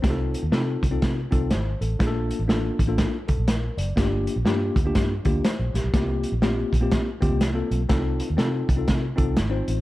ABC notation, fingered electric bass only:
X:1
M:4/4
L:1/16
Q:"Swing" 1/4=122
K:F
V:1 name="Fingered electric bass" clef=bass
C,,3 _E,, C,2 C,,2 C,2 C,,2 _A,,,2 =A,,,2 | B,,,3 A,,,3 A,,,3 z C,, B,,,3 ^F,,,2 | G,,,3 B,,, G,,2 D,,2 G,,2 D,,2 z B,,, B,,, =B,,, | C,,3 B,,,3 B,,,3 z D,, C,,3 =B,,,2 |
C,,3 _E,, C,2 C,,2 C,2 C,,2 _A,,,2 =A,,,2 |]